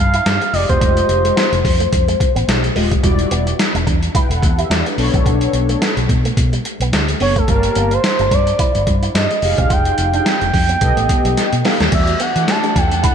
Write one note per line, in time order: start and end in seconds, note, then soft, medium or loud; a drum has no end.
0.00 0.18 G2 medium
0.00 0.55 F5 loud
0.14 0.23 E4 medium
0.14 closed hi-hat medium
0.26 0.37 G2 loud
0.26 0.37 D4 medium
0.26 snare loud
0.26 closed hi-hat medium
0.42 muted clean electric guitar stroke soft
0.42 closed hi-hat medium
0.53 0.65 F1 medium
0.53 1.43 G#3 medium
0.53 1.43 F4 medium
0.53 1.43 G4 medium
0.53 0.69 D5 medium
0.53 1.43 D#5 medium
0.53 open hi-hat medium
0.69 0.78 E1 medium
0.69 0.78 B3 medium
0.69 2.32 C5 medium
0.69 kick medium
0.69 closed hi-hat soft
0.81 1.02 F1 medium
0.81 0.93 A3 medium
0.81 kick loud
0.81 closed hi-hat medium
0.97 closed hi-hat medium
1.09 1.29 F1 medium
1.09 muted clean electric guitar stroke soft
1.09 closed hi-hat medium
1.24 1.33 G#3 medium
1.24 closed hi-hat soft
1.36 1.48 B3 medium
1.36 snare loud
1.36 closed hi-hat medium
1.52 1.61 F1 loud
1.52 muted clean electric guitar stroke soft
1.52 closed hi-hat soft
1.65 1.85 F2 medium
1.65 kick loud
1.65 open hi-hat medium
1.80 1.89 A3 medium
1.80 closed hi-hat medium
1.93 2.13 F2 loud
1.93 kick loud
1.93 closed hi-hat medium
2.08 2.17 G#3 medium
2.08 closed hi-hat medium
2.20 muted clean electric guitar stroke soft
2.20 kick loud
2.20 closed hi-hat medium
2.35 2.45 A1 medium
2.35 2.45 B3 medium
2.35 closed hi-hat medium
2.48 2.68 B1 medium
2.48 muted clean electric guitar stroke soft
2.48 snare loud
2.48 closed hi-hat medium
2.64 closed hi-hat soft
2.75 2.96 D#1 medium
2.75 2.88 G#3 medium
2.75 2.87 A3 medium
2.75 2.88 F4 medium
2.75 2.88 G4 medium
2.75 2.88 D#5 medium
2.75 open hi-hat medium
2.91 3.00 G#3 medium
2.91 kick medium
2.91 closed hi-hat medium
3.03 3.24 E1 loud
3.03 3.15 G3 medium
3.03 3.49 G3 medium
3.03 3.49 E4 medium
3.03 3.50 F#4 medium
3.03 3.50 D5 loud
3.03 kick loud
3.03 closed hi-hat medium
3.19 closed hi-hat medium
3.31 3.52 E1 medium
3.31 3.43 B3 medium
3.31 closed hi-hat medium
3.47 muted clean electric guitar stroke soft
3.47 closed hi-hat soft
3.59 muted clean electric guitar stroke soft
3.59 snare loud
3.59 closed hi-hat medium
3.74 3.84 E1 medium
3.74 3.84 D4 medium
3.74 closed hi-hat soft
3.87 4.07 E2 loud
3.87 3.98 D4 medium
3.87 kick loud
3.87 closed hi-hat medium
4.03 closed hi-hat soft
4.15 4.26 E4 medium
4.15 4.30 B4 medium
4.15 4.29 G5 medium
4.15 kick loud
4.15 closed hi-hat medium
4.30 4.44 E1 medium
4.30 4.57 A4 medium
4.30 4.56 F#5 medium
4.30 closed hi-hat medium
4.42 4.63 E2 medium
4.42 muted clean electric guitar stroke soft
4.42 kick loud
4.42 closed hi-hat medium
4.58 4.67 E4 medium
4.58 4.70 G4 medium
4.58 4.70 E5 medium
4.58 closed hi-hat medium
4.70 4.82 E2 medium
4.70 4.82 D4 medium
4.70 4.85 F#4 medium
4.70 4.85 D5 medium
4.70 snare medium
4.70 closed hi-hat medium
4.86 4.97 D4 medium
4.86 5.12 B4 medium
4.86 muted clean electric guitar stroke soft
4.86 closed hi-hat medium
4.98 5.09 B1 medium
4.98 5.88 B3 medium
4.98 5.88 D4 medium
4.98 5.88 A4 medium
4.98 5.88 C#5 loud
4.98 open hi-hat medium
5.14 5.23 A#1 medium
5.14 5.23 B3 medium
5.14 kick medium
5.14 closed hi-hat medium
5.26 5.46 B1 medium
5.26 5.38 B3 medium
5.26 kick loud
5.26 closed hi-hat medium
5.41 closed hi-hat medium
5.53 5.74 B1 medium
5.53 muted clean electric guitar stroke soft
5.53 closed hi-hat medium
5.69 5.78 A3 medium
5.69 closed hi-hat soft
5.82 5.93 B3 medium
5.82 snare loud
5.82 closed hi-hat medium
5.97 6.06 B1 loud
5.97 muted clean electric guitar stroke soft
5.97 closed hi-hat soft
6.09 6.30 B2 loud
6.09 kick loud
6.09 closed hi-hat medium
6.25 6.34 A3 medium
6.25 closed hi-hat medium
6.37 6.57 B2 loud
6.37 kick loud
6.37 closed hi-hat medium
6.53 6.62 G3 medium
6.53 closed hi-hat medium
6.65 muted clean electric guitar stroke soft
6.65 closed hi-hat medium
6.80 6.89 B1 medium
6.80 6.90 B3 medium
6.80 closed hi-hat medium
6.92 7.13 D2 medium
6.92 muted clean electric guitar stroke soft
6.92 snare loud
6.92 closed hi-hat medium
7.09 closed hi-hat medium
7.20 7.41 F#1 medium
7.20 7.32 B3 medium
7.20 7.33 D4 medium
7.20 7.33 A4 medium
7.20 7.33 C#5 medium
7.20 7.39 C#5 medium
7.20 open hi-hat medium
7.36 7.45 A3 medium
7.36 7.49 A4 medium
7.36 kick medium
7.36 closed hi-hat soft
7.48 7.68 G1 loud
7.48 7.60 G3 medium
7.48 7.94 A#3 medium
7.48 7.94 G4 medium
7.48 7.95 A#4 medium
7.48 7.94 F5 medium
7.48 7.94 A5 medium
7.48 kick loud
7.48 closed hi-hat medium
7.63 closed hi-hat medium
7.75 7.96 G1 medium
7.75 7.87 B3 medium
7.75 closed hi-hat medium
7.91 8.35 C5 loud
7.91 muted clean electric guitar stroke soft
7.91 closed hi-hat soft
8.04 muted clean electric guitar stroke soft
8.04 snare loud
8.04 closed hi-hat medium
8.19 8.28 G1 medium
8.19 8.28 D4 medium
8.19 closed hi-hat soft
8.31 8.52 G2 loud
8.31 8.43 D4 medium
8.31 8.88 D5 loud
8.31 kick medium
8.31 closed hi-hat medium
8.47 closed hi-hat medium
8.59 8.71 E4 medium
8.59 kick loud
8.59 closed hi-hat medium
8.75 8.84 G1 loud
8.75 closed hi-hat medium
8.87 9.07 G2 medium
8.87 muted clean electric guitar stroke soft
8.87 kick medium
8.87 closed hi-hat medium
9.02 9.11 E4 medium
9.02 closed hi-hat medium
9.15 9.26 G2 loud
9.15 9.26 D4 medium
9.15 9.56 D#5 medium
9.15 snare loud
9.15 closed hi-hat medium
9.30 muted clean electric guitar stroke soft
9.30 closed hi-hat soft
9.42 9.54 F1 medium
9.42 10.32 D#4 medium
9.42 10.32 G4 medium
9.42 10.32 G#4 medium
9.42 10.32 F5 medium
9.42 open hi-hat medium
9.58 9.67 E1 medium
9.58 9.67 C4 medium
9.58 9.73 F5 loud
9.58 kick medium
9.58 closed hi-hat soft
9.70 9.91 F1 medium
9.70 9.81 F4 medium
9.70 10.14 G5 loud
9.70 kick loud
9.70 closed hi-hat medium
9.85 closed hi-hat medium
9.98 10.19 F1 medium
9.98 muted clean electric guitar stroke soft
9.98 closed hi-hat medium
10.13 10.23 D4 medium
10.13 11.61 G5 loud
10.13 closed hi-hat soft
10.25 10.37 C4 medium
10.25 snare loud
10.25 closed hi-hat medium
10.41 10.50 F1 medium
10.41 muted clean electric guitar stroke soft
10.41 closed hi-hat soft
10.54 10.74 F2 loud
10.54 kick medium
10.54 open hi-hat medium
10.69 10.78 B3 medium
10.69 closed hi-hat medium
10.81 10.93 B1 loud
10.81 11.49 B3 loud
10.81 11.49 G4 medium
10.81 11.49 A4 medium
10.81 11.50 D#5 loud
10.81 kick loud
10.81 closed hi-hat medium
10.97 11.06 A1 medium
10.97 11.06 A3 medium
10.97 closed hi-hat medium
11.09 muted clean electric guitar stroke soft
11.09 kick loud
11.09 closed hi-hat medium
11.25 11.34 B1 medium
11.25 11.34 G3 medium
11.25 closed hi-hat medium
11.37 muted clean electric guitar stroke soft
11.37 snare medium
11.37 closed hi-hat medium
11.53 11.62 B2 medium
11.53 closed hi-hat soft
11.64 11.77 B3 medium
11.64 11.76 B3 medium
11.64 11.77 G4 medium
11.64 11.77 A4 medium
11.64 11.77 F5 medium
11.64 snare medium
11.64 open hi-hat medium
11.80 11.89 D#2 medium
11.80 11.89 D4 medium
11.80 snare medium
11.80 closed hi-hat soft
11.92 12.13 E2 loud
11.92 13.15 E3 medium
11.92 12.04 G3 medium
11.92 13.15 G3 medium
11.92 12.10 A3 medium
11.92 13.15 D4 medium
11.92 12.11 F#4 medium
11.92 12.11 G4 medium
11.92 13.15 A4 medium
11.92 12.11 D5 medium
11.92 12.23 E5 loud
11.92 13.15 F#5 medium
11.92 kick loud
11.92 closed hi-hat medium
11.92 crash medium
12.07 closed hi-hat medium
12.20 12.31 B3 medium
12.20 12.51 F#5 loud
12.20 closed hi-hat medium
12.36 12.45 E3 medium
12.36 12.73 A3 medium
12.36 12.74 F#4 medium
12.36 12.74 G4 medium
12.36 12.74 D5 medium
12.36 muted clean electric guitar stroke soft
12.36 closed hi-hat soft
12.48 12.79 A5 loud
12.48 muted clean electric guitar stroke soft
12.48 snare loud
12.48 closed hi-hat medium
12.63 12.72 D4 medium
12.63 closed hi-hat medium
12.75 13.08 E2 medium
12.75 12.87 D4 medium
12.75 13.04 G5 loud
12.75 kick loud
12.75 closed hi-hat medium
12.92 closed hi-hat medium
13.03 13.15 E4 medium
13.03 13.15 F#5 loud
13.03 kick loud
13.03 closed hi-hat medium